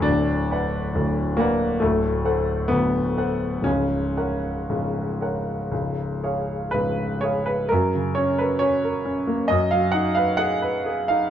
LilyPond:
\new Staff \with { instrumentName = "Grand piano" } { \time 4/4 \key fis \major \tempo 4 = 65 << { d'4. ais8 a4 b4 | cis'2. b'8 cis''16 b'16 | ais'8 cis''16 b'16 cis''4 dis''16 eis''16 fis''16 eis''16 fis''8. eis''16 | } \\ { <d,, d,>8 <b' d'' fis''>8 <d,, d,>8 <b' d'' fis''>8 <d,, d,>8 <a' c'' fis''>8 <d,, d,>8 <a' c'' fis''>8 | <cis,, cis,>8 <ais' cis'' fis''>8 <cis,, cis,>8 <ais' cis'' fis''>8 <cis,, cis,>8 <gis' cis'' eis''>8 <cis,, cis,>8 <gis' cis'' eis''>8 | fis,16 cis16 cis'16 ais'16 cis'16 ais'16 cis'16 ais16 fis,16 fis16 dis'16 b'16 gis'16 b'16 gis'16 dis'16 | } >> }